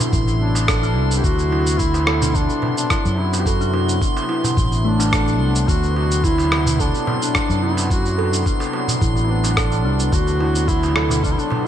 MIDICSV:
0, 0, Header, 1, 8, 480
1, 0, Start_track
1, 0, Tempo, 555556
1, 1070, Time_signature, 4, 2, 24, 8
1, 10087, End_track
2, 0, Start_track
2, 0, Title_t, "Synth texture"
2, 0, Program_c, 0, 99
2, 0, Note_on_c, 0, 84, 85
2, 10087, Note_off_c, 0, 84, 0
2, 10087, End_track
3, 0, Start_track
3, 0, Title_t, "Duduk"
3, 0, Program_c, 1, 69
3, 349, Note_on_c, 1, 62, 98
3, 978, Note_off_c, 1, 62, 0
3, 1014, Note_on_c, 1, 67, 84
3, 1071, Note_on_c, 1, 66, 113
3, 1084, Note_off_c, 1, 67, 0
3, 1553, Note_on_c, 1, 64, 114
3, 1566, Note_off_c, 1, 66, 0
3, 2038, Note_on_c, 1, 62, 98
3, 2051, Note_off_c, 1, 64, 0
3, 2398, Note_off_c, 1, 62, 0
3, 2403, Note_on_c, 1, 62, 94
3, 2759, Note_on_c, 1, 64, 90
3, 2772, Note_off_c, 1, 62, 0
3, 2940, Note_on_c, 1, 67, 73
3, 2953, Note_off_c, 1, 64, 0
3, 2998, Note_on_c, 1, 66, 101
3, 3011, Note_off_c, 1, 67, 0
3, 3474, Note_off_c, 1, 66, 0
3, 4200, Note_on_c, 1, 62, 105
3, 4917, Note_on_c, 1, 66, 107
3, 4930, Note_off_c, 1, 62, 0
3, 5150, Note_off_c, 1, 66, 0
3, 5155, Note_on_c, 1, 66, 105
3, 5400, Note_on_c, 1, 64, 118
3, 5413, Note_off_c, 1, 66, 0
3, 5880, Note_on_c, 1, 62, 97
3, 5893, Note_off_c, 1, 64, 0
3, 6242, Note_off_c, 1, 62, 0
3, 6250, Note_on_c, 1, 62, 94
3, 6602, Note_on_c, 1, 64, 92
3, 6615, Note_off_c, 1, 62, 0
3, 6836, Note_off_c, 1, 64, 0
3, 6845, Note_on_c, 1, 66, 97
3, 7284, Note_off_c, 1, 66, 0
3, 7981, Note_on_c, 1, 64, 68
3, 8042, Note_on_c, 1, 62, 89
3, 8055, Note_off_c, 1, 64, 0
3, 8758, Note_on_c, 1, 66, 106
3, 8771, Note_off_c, 1, 62, 0
3, 9235, Note_on_c, 1, 64, 107
3, 9248, Note_off_c, 1, 66, 0
3, 9708, Note_off_c, 1, 64, 0
3, 9714, Note_on_c, 1, 62, 95
3, 9777, Note_on_c, 1, 64, 78
3, 9790, Note_off_c, 1, 62, 0
3, 9842, Note_on_c, 1, 62, 97
3, 9855, Note_off_c, 1, 64, 0
3, 10087, Note_off_c, 1, 62, 0
3, 10087, End_track
4, 0, Start_track
4, 0, Title_t, "Steel tongue drum"
4, 0, Program_c, 2, 114
4, 111, Note_on_c, 2, 64, 80
4, 183, Note_off_c, 2, 64, 0
4, 588, Note_on_c, 2, 69, 102
4, 661, Note_off_c, 2, 69, 0
4, 717, Note_on_c, 2, 62, 101
4, 820, Note_off_c, 2, 62, 0
4, 830, Note_on_c, 2, 62, 100
4, 951, Note_off_c, 2, 62, 0
4, 1311, Note_on_c, 2, 64, 77
4, 1383, Note_off_c, 2, 64, 0
4, 1791, Note_on_c, 2, 69, 99
4, 1863, Note_off_c, 2, 69, 0
4, 1921, Note_on_c, 2, 62, 96
4, 2024, Note_off_c, 2, 62, 0
4, 2034, Note_on_c, 2, 62, 92
4, 2153, Note_off_c, 2, 62, 0
4, 2514, Note_on_c, 2, 64, 78
4, 2584, Note_off_c, 2, 64, 0
4, 2992, Note_on_c, 2, 69, 91
4, 3064, Note_off_c, 2, 69, 0
4, 3118, Note_on_c, 2, 62, 97
4, 3222, Note_off_c, 2, 62, 0
4, 3232, Note_on_c, 2, 62, 99
4, 3352, Note_off_c, 2, 62, 0
4, 3711, Note_on_c, 2, 64, 77
4, 3783, Note_off_c, 2, 64, 0
4, 4188, Note_on_c, 2, 57, 100
4, 4310, Note_off_c, 2, 57, 0
4, 4319, Note_on_c, 2, 62, 103
4, 4425, Note_off_c, 2, 62, 0
4, 4432, Note_on_c, 2, 69, 99
4, 4546, Note_off_c, 2, 69, 0
4, 4558, Note_on_c, 2, 69, 74
4, 4665, Note_off_c, 2, 69, 0
4, 4909, Note_on_c, 2, 62, 93
4, 5031, Note_off_c, 2, 62, 0
4, 5391, Note_on_c, 2, 64, 80
4, 5463, Note_off_c, 2, 64, 0
4, 5872, Note_on_c, 2, 69, 90
4, 5944, Note_off_c, 2, 69, 0
4, 6002, Note_on_c, 2, 62, 77
4, 6101, Note_off_c, 2, 62, 0
4, 6112, Note_on_c, 2, 62, 98
4, 6232, Note_off_c, 2, 62, 0
4, 6593, Note_on_c, 2, 64, 77
4, 6664, Note_off_c, 2, 64, 0
4, 7070, Note_on_c, 2, 69, 102
4, 7143, Note_off_c, 2, 69, 0
4, 7198, Note_on_c, 2, 62, 73
4, 7299, Note_off_c, 2, 62, 0
4, 7311, Note_on_c, 2, 62, 97
4, 7432, Note_off_c, 2, 62, 0
4, 7790, Note_on_c, 2, 64, 77
4, 7863, Note_off_c, 2, 64, 0
4, 8267, Note_on_c, 2, 69, 96
4, 8341, Note_off_c, 2, 69, 0
4, 8396, Note_on_c, 2, 62, 76
4, 8498, Note_off_c, 2, 62, 0
4, 8510, Note_on_c, 2, 62, 99
4, 8631, Note_off_c, 2, 62, 0
4, 8992, Note_on_c, 2, 64, 74
4, 9063, Note_off_c, 2, 64, 0
4, 9469, Note_on_c, 2, 69, 104
4, 9542, Note_off_c, 2, 69, 0
4, 9597, Note_on_c, 2, 62, 76
4, 9699, Note_off_c, 2, 62, 0
4, 9708, Note_on_c, 2, 62, 102
4, 9830, Note_off_c, 2, 62, 0
4, 10087, End_track
5, 0, Start_track
5, 0, Title_t, "Analog synth pad"
5, 0, Program_c, 3, 89
5, 0, Note_on_c, 3, 48, 82
5, 0, Note_on_c, 3, 54, 77
5, 0, Note_on_c, 3, 59, 78
5, 0, Note_on_c, 3, 64, 88
5, 4902, Note_off_c, 3, 64, 0
5, 4913, Note_on_c, 3, 62, 88
5, 10087, Note_off_c, 3, 48, 0
5, 10087, Note_off_c, 3, 54, 0
5, 10087, Note_off_c, 3, 59, 0
5, 10087, Note_off_c, 3, 62, 0
5, 10087, End_track
6, 0, Start_track
6, 0, Title_t, "Fretless electric bass"
6, 0, Program_c, 4, 35
6, 110, Note_on_c, 4, 33, 86
6, 832, Note_off_c, 4, 33, 0
6, 832, Note_on_c, 4, 36, 94
6, 1036, Note_off_c, 4, 36, 0
6, 1071, Note_on_c, 4, 38, 104
6, 2126, Note_off_c, 4, 38, 0
6, 2639, Note_on_c, 4, 42, 105
6, 3443, Note_off_c, 4, 42, 0
6, 3950, Note_on_c, 4, 33, 88
6, 4671, Note_off_c, 4, 33, 0
6, 4671, Note_on_c, 4, 36, 91
6, 4875, Note_off_c, 4, 36, 0
6, 4910, Note_on_c, 4, 38, 105
6, 5966, Note_off_c, 4, 38, 0
6, 6477, Note_on_c, 4, 42, 106
6, 7282, Note_off_c, 4, 42, 0
6, 7789, Note_on_c, 4, 33, 89
6, 8511, Note_off_c, 4, 33, 0
6, 8511, Note_on_c, 4, 36, 93
6, 8715, Note_off_c, 4, 36, 0
6, 8748, Note_on_c, 4, 38, 101
6, 9805, Note_off_c, 4, 38, 0
6, 10087, End_track
7, 0, Start_track
7, 0, Title_t, "Darbuka"
7, 0, Note_on_c, 9, 62, 50
7, 1, Note_on_c, 9, 64, 97
7, 83, Note_off_c, 9, 62, 0
7, 88, Note_off_c, 9, 64, 0
7, 238, Note_on_c, 9, 63, 34
7, 324, Note_off_c, 9, 63, 0
7, 476, Note_on_c, 9, 63, 70
7, 563, Note_off_c, 9, 63, 0
7, 1197, Note_on_c, 9, 62, 34
7, 1283, Note_off_c, 9, 62, 0
7, 1316, Note_on_c, 9, 62, 69
7, 1403, Note_off_c, 9, 62, 0
7, 1677, Note_on_c, 9, 63, 74
7, 1764, Note_off_c, 9, 63, 0
7, 1785, Note_on_c, 9, 63, 57
7, 1872, Note_off_c, 9, 63, 0
7, 1915, Note_on_c, 9, 64, 88
7, 1921, Note_on_c, 9, 62, 45
7, 2001, Note_off_c, 9, 64, 0
7, 2007, Note_off_c, 9, 62, 0
7, 2149, Note_on_c, 9, 63, 34
7, 2236, Note_off_c, 9, 63, 0
7, 2264, Note_on_c, 9, 62, 59
7, 2270, Note_on_c, 9, 64, 92
7, 2351, Note_off_c, 9, 62, 0
7, 2356, Note_off_c, 9, 64, 0
7, 2752, Note_on_c, 9, 62, 34
7, 2838, Note_off_c, 9, 62, 0
7, 2881, Note_on_c, 9, 63, 59
7, 2968, Note_off_c, 9, 63, 0
7, 3227, Note_on_c, 9, 62, 67
7, 3313, Note_off_c, 9, 62, 0
7, 3599, Note_on_c, 9, 63, 70
7, 3685, Note_off_c, 9, 63, 0
7, 3705, Note_on_c, 9, 63, 63
7, 3792, Note_off_c, 9, 63, 0
7, 3838, Note_on_c, 9, 64, 87
7, 3840, Note_on_c, 9, 62, 49
7, 3924, Note_off_c, 9, 64, 0
7, 3927, Note_off_c, 9, 62, 0
7, 4077, Note_on_c, 9, 63, 34
7, 4163, Note_off_c, 9, 63, 0
7, 4317, Note_on_c, 9, 63, 60
7, 4404, Note_off_c, 9, 63, 0
7, 5038, Note_on_c, 9, 62, 33
7, 5124, Note_off_c, 9, 62, 0
7, 5152, Note_on_c, 9, 62, 66
7, 5239, Note_off_c, 9, 62, 0
7, 5514, Note_on_c, 9, 63, 65
7, 5600, Note_off_c, 9, 63, 0
7, 5631, Note_on_c, 9, 63, 65
7, 5717, Note_off_c, 9, 63, 0
7, 5756, Note_on_c, 9, 64, 98
7, 5761, Note_on_c, 9, 62, 49
7, 5843, Note_off_c, 9, 64, 0
7, 5847, Note_off_c, 9, 62, 0
7, 5993, Note_on_c, 9, 63, 37
7, 6080, Note_off_c, 9, 63, 0
7, 6111, Note_on_c, 9, 62, 65
7, 6111, Note_on_c, 9, 64, 98
7, 6197, Note_off_c, 9, 62, 0
7, 6198, Note_off_c, 9, 64, 0
7, 6589, Note_on_c, 9, 62, 33
7, 6676, Note_off_c, 9, 62, 0
7, 6714, Note_on_c, 9, 63, 67
7, 6801, Note_off_c, 9, 63, 0
7, 7074, Note_on_c, 9, 62, 72
7, 7160, Note_off_c, 9, 62, 0
7, 7432, Note_on_c, 9, 63, 67
7, 7518, Note_off_c, 9, 63, 0
7, 7546, Note_on_c, 9, 63, 64
7, 7632, Note_off_c, 9, 63, 0
7, 7673, Note_on_c, 9, 64, 85
7, 7675, Note_on_c, 9, 62, 56
7, 7759, Note_off_c, 9, 64, 0
7, 7762, Note_off_c, 9, 62, 0
7, 7911, Note_on_c, 9, 63, 35
7, 7997, Note_off_c, 9, 63, 0
7, 8155, Note_on_c, 9, 63, 62
7, 8242, Note_off_c, 9, 63, 0
7, 8871, Note_on_c, 9, 62, 40
7, 8957, Note_off_c, 9, 62, 0
7, 8989, Note_on_c, 9, 62, 68
7, 9076, Note_off_c, 9, 62, 0
7, 9359, Note_on_c, 9, 63, 66
7, 9446, Note_off_c, 9, 63, 0
7, 9466, Note_on_c, 9, 63, 66
7, 9552, Note_off_c, 9, 63, 0
7, 9589, Note_on_c, 9, 64, 79
7, 9597, Note_on_c, 9, 62, 59
7, 9675, Note_off_c, 9, 64, 0
7, 9683, Note_off_c, 9, 62, 0
7, 9833, Note_on_c, 9, 63, 34
7, 9919, Note_off_c, 9, 63, 0
7, 9940, Note_on_c, 9, 62, 67
7, 9949, Note_on_c, 9, 64, 94
7, 10026, Note_off_c, 9, 62, 0
7, 10035, Note_off_c, 9, 64, 0
7, 10087, End_track
8, 0, Start_track
8, 0, Title_t, "Drums"
8, 2, Note_on_c, 9, 82, 74
8, 89, Note_off_c, 9, 82, 0
8, 110, Note_on_c, 9, 36, 104
8, 112, Note_on_c, 9, 82, 55
8, 197, Note_off_c, 9, 36, 0
8, 198, Note_off_c, 9, 82, 0
8, 240, Note_on_c, 9, 82, 33
8, 327, Note_off_c, 9, 82, 0
8, 481, Note_on_c, 9, 82, 73
8, 567, Note_off_c, 9, 82, 0
8, 590, Note_on_c, 9, 36, 111
8, 590, Note_on_c, 9, 37, 83
8, 593, Note_on_c, 9, 82, 55
8, 676, Note_off_c, 9, 37, 0
8, 677, Note_off_c, 9, 36, 0
8, 679, Note_off_c, 9, 82, 0
8, 718, Note_on_c, 9, 82, 35
8, 804, Note_off_c, 9, 82, 0
8, 960, Note_on_c, 9, 82, 65
8, 1047, Note_off_c, 9, 82, 0
8, 1071, Note_on_c, 9, 36, 111
8, 1073, Note_on_c, 9, 82, 56
8, 1157, Note_off_c, 9, 36, 0
8, 1159, Note_off_c, 9, 82, 0
8, 1200, Note_on_c, 9, 82, 36
8, 1286, Note_off_c, 9, 82, 0
8, 1439, Note_on_c, 9, 82, 70
8, 1526, Note_off_c, 9, 82, 0
8, 1550, Note_on_c, 9, 36, 101
8, 1550, Note_on_c, 9, 82, 57
8, 1636, Note_off_c, 9, 36, 0
8, 1636, Note_off_c, 9, 82, 0
8, 1678, Note_on_c, 9, 82, 35
8, 1765, Note_off_c, 9, 82, 0
8, 1789, Note_on_c, 9, 37, 76
8, 1875, Note_off_c, 9, 37, 0
8, 1918, Note_on_c, 9, 82, 73
8, 2005, Note_off_c, 9, 82, 0
8, 2029, Note_on_c, 9, 82, 55
8, 2030, Note_on_c, 9, 36, 101
8, 2116, Note_off_c, 9, 36, 0
8, 2116, Note_off_c, 9, 82, 0
8, 2157, Note_on_c, 9, 82, 35
8, 2243, Note_off_c, 9, 82, 0
8, 2398, Note_on_c, 9, 82, 76
8, 2484, Note_off_c, 9, 82, 0
8, 2508, Note_on_c, 9, 37, 72
8, 2510, Note_on_c, 9, 36, 116
8, 2511, Note_on_c, 9, 82, 57
8, 2594, Note_off_c, 9, 37, 0
8, 2596, Note_off_c, 9, 36, 0
8, 2597, Note_off_c, 9, 82, 0
8, 2639, Note_on_c, 9, 82, 34
8, 2726, Note_off_c, 9, 82, 0
8, 2880, Note_on_c, 9, 82, 68
8, 2967, Note_off_c, 9, 82, 0
8, 2989, Note_on_c, 9, 36, 108
8, 2993, Note_on_c, 9, 82, 57
8, 3076, Note_off_c, 9, 36, 0
8, 3080, Note_off_c, 9, 82, 0
8, 3120, Note_on_c, 9, 82, 36
8, 3207, Note_off_c, 9, 82, 0
8, 3360, Note_on_c, 9, 82, 65
8, 3446, Note_off_c, 9, 82, 0
8, 3470, Note_on_c, 9, 36, 104
8, 3474, Note_on_c, 9, 82, 59
8, 3556, Note_off_c, 9, 36, 0
8, 3561, Note_off_c, 9, 82, 0
8, 3602, Note_on_c, 9, 82, 34
8, 3688, Note_off_c, 9, 82, 0
8, 3841, Note_on_c, 9, 82, 72
8, 3928, Note_off_c, 9, 82, 0
8, 3950, Note_on_c, 9, 36, 105
8, 3953, Note_on_c, 9, 82, 54
8, 4036, Note_off_c, 9, 36, 0
8, 4040, Note_off_c, 9, 82, 0
8, 4081, Note_on_c, 9, 82, 33
8, 4167, Note_off_c, 9, 82, 0
8, 4321, Note_on_c, 9, 82, 71
8, 4407, Note_off_c, 9, 82, 0
8, 4429, Note_on_c, 9, 36, 107
8, 4430, Note_on_c, 9, 37, 72
8, 4433, Note_on_c, 9, 82, 57
8, 4516, Note_off_c, 9, 36, 0
8, 4516, Note_off_c, 9, 37, 0
8, 4520, Note_off_c, 9, 82, 0
8, 4559, Note_on_c, 9, 82, 35
8, 4645, Note_off_c, 9, 82, 0
8, 4799, Note_on_c, 9, 82, 70
8, 4886, Note_off_c, 9, 82, 0
8, 4910, Note_on_c, 9, 36, 112
8, 4913, Note_on_c, 9, 82, 57
8, 4996, Note_off_c, 9, 36, 0
8, 4999, Note_off_c, 9, 82, 0
8, 5041, Note_on_c, 9, 82, 34
8, 5127, Note_off_c, 9, 82, 0
8, 5282, Note_on_c, 9, 82, 68
8, 5369, Note_off_c, 9, 82, 0
8, 5390, Note_on_c, 9, 36, 106
8, 5395, Note_on_c, 9, 82, 54
8, 5477, Note_off_c, 9, 36, 0
8, 5481, Note_off_c, 9, 82, 0
8, 5524, Note_on_c, 9, 82, 33
8, 5611, Note_off_c, 9, 82, 0
8, 5632, Note_on_c, 9, 37, 68
8, 5718, Note_off_c, 9, 37, 0
8, 5762, Note_on_c, 9, 82, 72
8, 5849, Note_off_c, 9, 82, 0
8, 5870, Note_on_c, 9, 36, 101
8, 5875, Note_on_c, 9, 82, 57
8, 5956, Note_off_c, 9, 36, 0
8, 5961, Note_off_c, 9, 82, 0
8, 6001, Note_on_c, 9, 82, 33
8, 6088, Note_off_c, 9, 82, 0
8, 6240, Note_on_c, 9, 82, 67
8, 6326, Note_off_c, 9, 82, 0
8, 6349, Note_on_c, 9, 37, 73
8, 6350, Note_on_c, 9, 36, 105
8, 6352, Note_on_c, 9, 82, 50
8, 6435, Note_off_c, 9, 37, 0
8, 6436, Note_off_c, 9, 36, 0
8, 6438, Note_off_c, 9, 82, 0
8, 6480, Note_on_c, 9, 82, 32
8, 6567, Note_off_c, 9, 82, 0
8, 6719, Note_on_c, 9, 82, 68
8, 6806, Note_off_c, 9, 82, 0
8, 6830, Note_on_c, 9, 36, 107
8, 6834, Note_on_c, 9, 82, 54
8, 6917, Note_off_c, 9, 36, 0
8, 6920, Note_off_c, 9, 82, 0
8, 6961, Note_on_c, 9, 82, 33
8, 7047, Note_off_c, 9, 82, 0
8, 7200, Note_on_c, 9, 82, 65
8, 7286, Note_off_c, 9, 82, 0
8, 7310, Note_on_c, 9, 36, 94
8, 7314, Note_on_c, 9, 82, 55
8, 7397, Note_off_c, 9, 36, 0
8, 7400, Note_off_c, 9, 82, 0
8, 7441, Note_on_c, 9, 82, 33
8, 7527, Note_off_c, 9, 82, 0
8, 7679, Note_on_c, 9, 82, 73
8, 7766, Note_off_c, 9, 82, 0
8, 7789, Note_on_c, 9, 36, 100
8, 7792, Note_on_c, 9, 82, 56
8, 7876, Note_off_c, 9, 36, 0
8, 7878, Note_off_c, 9, 82, 0
8, 7920, Note_on_c, 9, 82, 30
8, 8007, Note_off_c, 9, 82, 0
8, 8158, Note_on_c, 9, 82, 66
8, 8245, Note_off_c, 9, 82, 0
8, 8268, Note_on_c, 9, 36, 98
8, 8268, Note_on_c, 9, 37, 72
8, 8271, Note_on_c, 9, 82, 48
8, 8355, Note_off_c, 9, 36, 0
8, 8355, Note_off_c, 9, 37, 0
8, 8358, Note_off_c, 9, 82, 0
8, 8397, Note_on_c, 9, 82, 34
8, 8484, Note_off_c, 9, 82, 0
8, 8636, Note_on_c, 9, 82, 64
8, 8723, Note_off_c, 9, 82, 0
8, 8748, Note_on_c, 9, 36, 102
8, 8750, Note_on_c, 9, 82, 56
8, 8834, Note_off_c, 9, 36, 0
8, 8836, Note_off_c, 9, 82, 0
8, 8877, Note_on_c, 9, 82, 34
8, 8964, Note_off_c, 9, 82, 0
8, 9118, Note_on_c, 9, 82, 60
8, 9204, Note_off_c, 9, 82, 0
8, 9228, Note_on_c, 9, 36, 98
8, 9231, Note_on_c, 9, 82, 49
8, 9315, Note_off_c, 9, 36, 0
8, 9317, Note_off_c, 9, 82, 0
8, 9358, Note_on_c, 9, 82, 34
8, 9445, Note_off_c, 9, 82, 0
8, 9467, Note_on_c, 9, 37, 70
8, 9553, Note_off_c, 9, 37, 0
8, 9599, Note_on_c, 9, 82, 71
8, 9685, Note_off_c, 9, 82, 0
8, 9708, Note_on_c, 9, 36, 95
8, 9712, Note_on_c, 9, 82, 50
8, 9795, Note_off_c, 9, 36, 0
8, 9799, Note_off_c, 9, 82, 0
8, 9840, Note_on_c, 9, 82, 30
8, 9927, Note_off_c, 9, 82, 0
8, 10087, End_track
0, 0, End_of_file